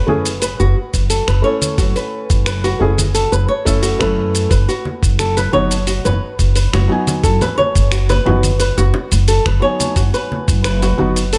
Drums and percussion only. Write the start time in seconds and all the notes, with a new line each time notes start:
0.08 low conga
0.25 open hi-hat, shaker
0.42 open hi-hat, shaker
0.60 shaker
0.94 kick, open hi-hat, shaker
1.10 open hi-hat, shaker
1.28 finger snap, open hi-hat, shaker
1.62 open hi-hat, low conga, shaker
1.78 kick, open hi-hat, shaker
1.96 open hi-hat, shaker
2.30 kick, open hi-hat, shaker
2.46 finger snap, open hi-hat, shaker
2.64 open hi-hat, shaker
2.98 open hi-hat, low conga, shaker
3.15 open hi-hat, shaker
3.33 shaker
3.66 kick, open hi-hat, shaker
3.83 open hi-hat, shaker
4.00 finger snap, kick, open hi-hat, low conga, shaker
4.35 open hi-hat, shaker
4.51 kick, open hi-hat, shaker
4.69 open hi-hat, shaker
4.85 high conga
5.03 kick, open hi-hat, shaker
5.19 finger snap, open hi-hat, high conga, shaker
5.37 open hi-hat, muted conga, shaker
5.53 low conga
5.71 open hi-hat, shaker
5.87 open hi-hat, shaker
6.06 low conga, shaker
6.39 kick, open hi-hat, shaker
6.56 open hi-hat, shaker
6.73 finger snap, open hi-hat, muted conga, high conga, shaker
7.07 open hi-hat, muted conga, low conga, shaker
7.24 kick, open hi-hat, shaker
7.41 open hi-hat, low conga, shaker
7.59 high conga
7.75 kick, open hi-hat, shaker
7.92 finger snap, open hi-hat, shaker
8.09 open hi-hat, muted conga, high conga, shaker
8.26 low conga
8.43 open hi-hat, low conga, shaker
8.60 open hi-hat, shaker
8.78 muted conga, shaker
8.94 muted conga
9.12 open hi-hat, shaker
9.28 open hi-hat, shaker
9.46 finger snap, kick, open hi-hat, low conga, shaker
9.80 open hi-hat, high conga, shaker
9.96 kick, open hi-hat, shaker
10.14 open hi-hat, shaker
10.32 high conga
10.48 kick, open hi-hat, shaker
10.64 finger snap, open hi-hat, high conga, shaker
10.82 open hi-hat, muted conga, shaker
10.98 low conga
11.16 open hi-hat, shaker
11.33 open hi-hat, shaker